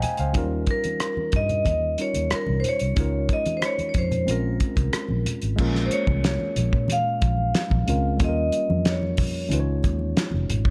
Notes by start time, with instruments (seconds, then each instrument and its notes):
Already playing: tine electric piano C5 D#5 F5 G5 G#5 A#5
0.02 tine electric piano G#5, closed hi-hat, muted conga, low conga
0.17 fingered electric bass C#2, tine electric piano C5 F5, closed hi-hat
0.32 fingered electric bass D#2, tine electric piano F#3 C#4 D#4 F4, kick, closed hi-hat, muted conga
0.38 tine electric piano G3 A#4
0.67 kick, closed hi-hat, muted conga
0.71 vibraphone A#4
0.84 closed hi-hat, high conga
1.00 cross-stick, closed hi-hat
1.17 muted fingered electric bass stroke, high conga
1.32 fingered electric bass G2, kick, closed hi-hat, low conga
1.36 vibraphone D#5
1.49 closed hi-hat, low conga
1.65 fingered electric bass D#2, kick, closed hi-hat, muted conga, high conga
1.98 tine electric piano G3 C#4 D#4 F4 A#4, vibraphone C#5, closed hi-hat
2.14 fingered electric bass D#2, closed hi-hat, high conga
2.30 muted fingered electric bass stroke, cross-stick, closed hi-hat, muted conga
2.35 vibraphone A#4
2.46 fingered electric bass C2, high conga
2.60 vibraphone C5
2.64 closed hi-hat, muted conga, low conga
2.69 vibraphone C#5
2.79 fingered electric bass C2, closed hi-hat
2.95 fingered electric bass C#2, tine electric piano G#3 C#4 D#4 F4, kick, closed hi-hat, muted conga
3.00 tine electric piano A#4
3.29 kick, closed hi-hat, muted conga
3.33 vibraphone D#5
3.46 closed hi-hat, high conga
3.57 vibraphone C5
3.61 cross-stick, closed hi-hat, muted conga
3.66 vibraphone C#5
3.78 muted fingered electric bass stroke, closed hi-hat, high conga
3.89 vibraphone C#5
3.94 fingered electric bass F2, kick, closed hi-hat, muted conga, low conga
3.98 vibraphone C5
4.11 closed hi-hat, low conga
4.25 fingered electric bass A#1, tine electric piano G#3 C4 C#4, closed hi-hat, high conga
4.29 tine electric piano F4 A#4, vibraphone A#4
4.60 kick, closed hi-hat, muted conga
4.76 fingered electric bass C2, kick, closed hi-hat, high conga
4.93 cross-stick, closed hi-hat
5.09 fingered electric bass A#1, high conga
5.26 closed hi-hat, muted conga, low conga
5.42 fingered electric bass G#1, closed hi-hat
5.56 fingered electric bass A#1, tine electric piano G#3 A#3 C#4, kick, crash, muted conga
5.60 tine electric piano F4 A#4
5.75 snare
5.86 vibraphone C5
5.91 vibraphone C#5, closed hi-hat, muted conga
6.07 fingered electric bass C2, kick, high conga
6.24 snare, closed hi-hat
6.40 high conga
6.56 fingered electric bass A#1, closed hi-hat, muted conga, low conga
6.73 fingered electric bass A#2, kick
6.88 closed hi-hat, muted conga, high conga
6.92 vibraphone F5
7.21 fingered electric bass A#1, kick, closed hi-hat, muted conga
7.37 high conga
7.55 snare, closed hi-hat
7.70 fingered electric bass A#1, kick, high conga
7.87 fingered electric bass C#2, tine electric piano G#3 C4 C#4 F4 A#4, closed hi-hat, muted conga, low conga
8.17 fingered electric bass D#2, tine electric piano G3 A#3 C#4, kick, closed hi-hat, muted conga
8.21 tine electric piano F4 A4, vibraphone D#5
8.29 tine electric piano A#4
8.52 closed hi-hat, muted conga
8.69 fingered electric bass F2, high conga
8.85 snare, closed hi-hat, muted conga
8.89 vibraphone C#5
9.02 high conga
9.17 kick, open hi-hat, muted conga, low conga
9.48 fingered electric bass C#2, tine electric piano G#3 C#4 D#4, closed hi-hat, muted conga, high conga
9.53 tine electric piano F4 B4
9.60 tine electric piano C#5
9.83 fingered electric bass D#2, kick, closed hi-hat, muted conga
9.99 high conga
10.16 snare, closed hi-hat, muted conga
10.31 fingered electric bass F1, high conga
10.50 fingered electric bass G#1, closed hi-hat, muted conga, low conga
10.65 kick